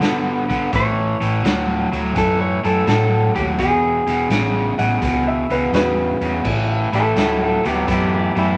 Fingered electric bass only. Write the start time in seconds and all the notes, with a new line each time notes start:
0.00 D3
0.50 D3
0.73 A1
1.20 A1
1.43 D2
1.92 D2
2.16 F#2
2.65 F#2
2.87 A2
3.36 D#2
3.59 E1
4.06 E1
4.30 A1
4.79 A1
5.02 C#2
5.50 C#2
5.72 E2
6.21 E2
6.45 A1
6.93 A1
7.16 D2
7.65 D2
7.88 F#2
8.36 F#2